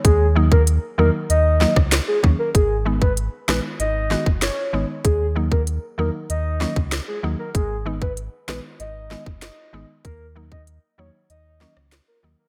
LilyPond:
<<
  \new Staff \with { instrumentName = "Soft synth lead" } { \time 4/4 \key gis \minor \tempo 4 = 96 gis'8 r16 ais'16 r8 ais'16 r16 dis''8. r8 gis'16 r16 ais'16 | gis'8 r16 b'16 r8 b'16 r16 dis''8. r16 cis''8. r16 | gis'8 r16 ais'16 r8 ais'16 r16 dis''8. r8 gis'16 r16 ais'16 | gis'8 r16 b'16 r8 b'16 r16 dis''8. r16 dis''8. r16 |
ais'8 r16 dis''16 r8 cis''16 r16 dis''8. r8 ais'16 r16 ais'16 | }
  \new Staff \with { instrumentName = "Synth pluck" } { \time 4/4 \key gis \minor r8 <dis fis ais dis'>8 r8 <dis fis ais dis'>8 r8 <dis fis ais dis'>8 r8 <dis fis ais cis'>8 | r8 <dis gis b dis'>8 r8 <dis gis b dis'>8 r8 <dis gis b fis'>8 r8 <dis gis b dis'>8 | r8 <dis fis ais dis'>8 r8 <dis fis ais dis'>8 r8 <dis fis ais cis'>8 r8 <dis fis ais dis'>8 | r8 <dis gis b dis'>8 r8 <dis gis b dis'>8 r8 <dis gis b dis'>8 r8 <dis gis b dis'>8 |
r8 <dis fis ais dis'>8 r8 <dis fis ais dis'>8 r8 <dis fis ais cis'>8 r8 <dis fis ais dis'>8 | }
  \new Staff \with { instrumentName = "Sub bass" } { \clef bass \time 4/4 \key gis \minor dis,4~ dis,16 r16 e,16 r16 dis,8. cis,8 r16 dis,16 r16 | gis,,4~ gis,,16 r16 ais,,16 r16 gis,,8. fis,,8 r16 gis,,16 r16 | dis,4~ dis,16 r16 e,16 r16 dis,8. cis,8 r16 dis,16 r16 | gis,,4~ gis,,16 r16 ais,,16 r16 gis,,8. fis,,8 r16 gis,,16 r16 |
dis,4~ dis,16 r16 e,16 r16 dis,8. cis,8 r16 dis,16 r16 | }
  \new DrumStaff \with { instrumentName = "Drums" } \drummode { \time 4/4 <hh bd>8. bd16 hh4 hh8 sn16 <bd ss>16 <hh ss sn>8 bd8 | <hh bd>8. bd16 hh8 <ss sn>8 hh8 sn16 bd16 <hh ss sn>4 | <hh bd>8. bd16 hh4 hh8 sn16 bd16 <hh ss sn>4 | <hh bd>8. bd16 hh8 <ss sn>8 hh8 sn16 bd16 <hh ss sn>4 |
<hh bd>8. bd16 hh4 hh8 sn16 ss16 <hh ss sn>4 | }
>>